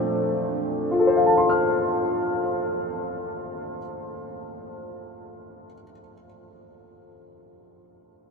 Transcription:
0.00 3.77 A#2 soft
0.00 3.78 F3 soft
0.00 3.79 A3 soft
0.00 3.79 C4 soft
0.00 3.80 D4 medium
0.91 5.66 F4 soft
0.99 5.74 A4 soft
1.07 5.82 C5 soft
1.17 5.91 F5 soft
1.26 6.01 A5 soft
1.38 6.12 C6 soft
1.49 6.24 F6 soft

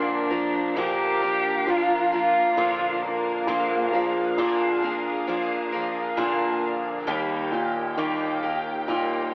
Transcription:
0.00 0.31 A#2 soft
0.00 0.75 A#2 medium
0.00 0.31 D3 medium
0.00 0.31 F3 medium
0.00 0.31 A#3 medium
0.00 0.30 D4 medium
0.00 0.80 D4 medium
0.00 7.03 D4 medium
0.00 0.29 A#4 medium
0.00 3.44 A#4 medium
0.00 7.03 F5 medium
0.31 1.65 F3 soft
0.31 0.76 F3 soft
0.31 0.76 A#3 soft
0.31 0.76 D4 soft
0.31 0.77 A#4 soft
0.76 1.22 A#2 medium
0.76 2.53 A#2 soft
0.76 1.22 D3 medium
0.76 1.22 F3 medium
0.76 1.22 A#3 medium
0.76 1.21 D4 medium
0.76 1.71 G4 medium
0.76 1.20 A#4 medium
1.21 1.66 F3 soft
1.21 1.67 A#3 soft
1.21 1.67 D4 soft
1.21 1.67 A#4 soft
1.67 3.43 F3 soft
1.67 2.12 F3 soft
1.67 2.12 A#3 soft
1.67 2.12 D4 medium
1.67 2.14 F4 medium
1.67 2.11 A#4 medium
2.12 2.57 F3 soft
2.12 2.57 A#3 soft
2.12 2.57 D4 soft
2.12 3.06 F4 medium
2.12 2.57 A#4 soft
2.57 3.45 A#2 soft
2.57 3.46 A#2 medium
2.57 3.47 D3 medium
2.57 3.47 F3 medium
2.57 3.48 A#3 medium
2.57 3.47 D4 medium
2.57 3.48 A#4 medium
3.04 4.38 A#3 medium
3.47 4.36 A#2 medium
3.47 3.93 A#2 medium
3.47 3.93 D3 medium
3.47 3.93 F3 medium
3.47 3.93 A#3 medium
3.47 3.92 D4 medium
3.47 7.04 G#4 medium
3.47 3.91 A#4 medium
3.92 5.26 F3 soft
3.92 4.37 F3 soft
3.92 4.38 A#3 soft
3.92 4.38 D4 soft
3.92 4.37 A#4 soft
4.38 6.13 A#2 soft
4.38 4.82 A#2 medium
4.38 4.83 D3 medium
4.38 4.83 F3 medium
4.38 4.83 A#3 medium
4.38 4.82 D4 medium
4.38 4.81 A#4 medium
4.82 5.26 F3 soft
4.82 5.27 A#3 soft
4.82 5.28 D4 soft
4.82 5.27 A#4 soft
5.27 5.72 F3 medium
5.27 7.03 F3 soft
5.27 5.73 A#3 medium
5.27 5.72 D4 medium
5.27 5.71 A#4 medium
5.72 6.16 F3 soft
5.72 6.17 A#3 soft
5.72 6.17 D4 soft
5.72 6.17 A#4 medium
6.17 7.07 A#2 medium
6.17 7.04 A#2 medium
6.17 7.06 D3 medium
6.17 7.07 F3 medium
6.17 7.07 A#3 medium
6.17 7.07 D4 medium
6.17 7.08 A#4 medium
7.06 9.34 D#2 medium
7.06 7.52 D#3 medium
7.06 7.52 G3 medium
7.06 9.34 A#3 medium
7.06 7.52 A#3 medium
7.06 7.52 D#4 medium
7.06 9.34 G4 medium
7.06 7.51 G4 medium
7.06 9.34 G5 medium
7.52 8.87 A#2 soft
7.52 7.97 A#3 soft
7.52 7.97 D#4 medium
7.52 7.97 G4 medium
7.97 9.34 D#3 soft
7.97 8.43 D#3 medium
7.97 8.43 G3 medium
7.97 8.43 A#3 medium
7.97 8.43 D#4 medium
7.97 8.42 G4 medium
8.43 8.88 A#3 soft
8.43 8.88 D#4 soft
8.43 8.88 G4 soft
8.88 9.34 A#2 soft
8.88 9.33 G3 medium
8.88 9.34 A#3 medium
8.88 9.33 D#4 medium
8.88 9.32 G4 medium

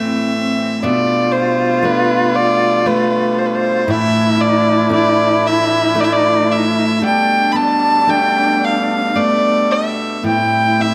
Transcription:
0.00 0.79 A2 medium
0.00 0.82 A2 medium
0.00 0.80 E3 soft
0.00 1.82 A3 medium
0.00 0.80 C4 medium
0.00 0.83 C4 medium
0.00 0.94 C4 soft
0.00 0.84 E4 medium
0.00 0.84 E5 medium
0.82 3.85 B2 medium
0.82 3.87 B2 medium
0.82 3.85 G3 medium
0.82 3.85 A3 medium
0.82 1.83 D4 medium
0.82 3.87 F4 loud
0.82 1.33 D5 medium
1.32 1.87 C5 medium
1.83 2.85 A3 medium
1.83 2.85 B3 medium
1.83 2.87 D4 medium
1.83 2.37 B4 medium
2.35 2.87 D5 medium
2.86 4.89 A3 medium
2.86 3.88 D4 medium
2.86 3.39 B4 medium
3.38 3.47 C5 medium
3.45 3.56 B4 medium
3.55 3.92 C5 medium
3.87 7.02 A2 medium
3.87 6.99 A2 medium
3.87 6.99 E3 medium
3.87 6.99 F3 medium
3.87 6.99 D4 medium
3.87 7.03 E4 loud
3.87 4.90 E4 medium
3.87 4.42 E5 medium
4.38 4.90 D4 medium
4.38 4.91 D5 medium
4.89 5.94 A3 medium
4.89 5.95 D4 medium
4.89 5.95 E4 medium
4.89 5.49 D5 medium
5.47 6.02 E5 medium
5.95 7.57 A3 medium
5.95 7.02 D4 soft
5.95 7.02 E4 medium
6.00 6.05 D5 medium
6.00 6.14 E5 medium
6.12 6.53 D5 medium
6.52 7.03 E5 medium
7.00 10.22 B2 medium
7.00 10.26 G3 medium
7.00 10.94 G3 medium
7.00 10.22 A3 medium
7.00 9.72 D4 medium
7.00 8.07 D4 medium
7.05 7.53 G5 medium
7.52 8.07 B3 medium
7.52 8.11 A5 medium
7.52 7.57 B5 medium
8.07 9.15 A3 medium
8.07 9.15 B3 medium
8.07 9.16 D4 medium
8.07 8.65 G5 medium
8.64 9.17 F5 medium
9.15 10.94 A3 soft
9.15 10.36 B3 medium
9.15 10.24 D4 medium
9.15 9.73 D5 medium
9.71 10.25 E5 medium
10.23 10.94 A2 medium
10.23 10.94 C4 medium
10.23 10.94 E4 medium
10.23 10.83 G5 medium
10.80 10.94 C4 soft
10.80 10.94 E5 medium

